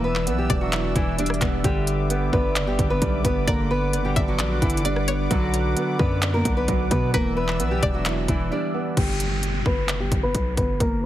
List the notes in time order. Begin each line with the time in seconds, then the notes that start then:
Already playing: E1 E3 B4 D5 E5 E6
0.04 B3 B4
0.15 clap
0.27 B1 B3, closed hi-hat
0.38 G3 G4
0.50 E1 D4 D5, kick, closed hi-hat
0.61 F#3 F#4
0.73 E4, clap, closed hi-hat
0.95 E1 E3 E4, kick, closed hi-hat
1.19 G3 D4 D5, closed hi-hat
1.26 cross-stick, closed hi-hat
1.34 closed hi-hat
1.41 E1 B3, kick, clap, closed hi-hat
1.64 G1 D3 G3 G4 B4 D6, kick, closed hi-hat
1.87 closed hi-hat
2.10 B3, closed hi-hat
2.33 G1 B3 D4 B4, kick
2.56 F#1 D5, clap, closed hi-hat
2.67 G1 G3 G4
2.79 G1 D3, kick, closed hi-hat
2.90 B3 B4
3.02 B1 G3, kick, closed hi-hat
3.25 G1 B3 B4, kick, closed hi-hat
3.47 G1 D3 A#3 A#4 D5 F#5, kick, closed hi-hat
3.71 B3 B4
3.93 F#1 B3, closed hi-hat
4.05 G1 G3 G4
4.16 G1 D4 E5, kick, closed hi-hat
4.28 F#3 F#4
4.39 A#1 D5, clap, closed hi-hat
4.62 G1 D3 E3 E4, kick, closed hi-hat
4.70 closed hi-hat
4.77 closed hi-hat
4.85 G3 D4 D5, closed hi-hat
4.96 cross-stick
5.08 B3 C#5, closed hi-hat
5.31 B1 D3 F#3 F#4, kick, closed hi-hat
5.54 closed hi-hat
5.77 B3, closed hi-hat
5.99 F#2 B3 D4 B4, kick
6.22 D5, clap, closed hi-hat
6.34 A#3 A#4
6.45 B1 D3, kick, closed hi-hat
6.57 B3 B4
6.68 B1 F#3, kick, closed hi-hat
6.91 B2 B3 B4, kick, closed hi-hat
7.14 E1 E3 A#3 A#4 B4 D5 E5 E6, kick, closed hi-hat
7.37 B3 B4
7.48 clap
7.60 B1 B3, closed hi-hat
7.71 G3 G4
7.83 E1 D4 D5, kick, closed hi-hat
7.94 F#3 F#4
8.05 E4, clap, closed hi-hat
8.28 E1 E3 E4, kick, closed hi-hat
8.51 G3 D4 D5
8.74 B3
8.97 G1 G3 G4, kick, closed hi-hat, crash, downlifter
9.20 closed hi-hat
9.43 closed hi-hat
9.66 G1 B3 B4, kick
9.89 F#1, clap, closed hi-hat
10.00 G1 G3 G4
10.12 G1, kick, closed hi-hat
10.23 B3 B4
10.35 B1, kick, closed hi-hat
10.57 G1 B3 B4, kick, closed hi-hat
10.80 G1 A#3 A#4, kick, closed hi-hat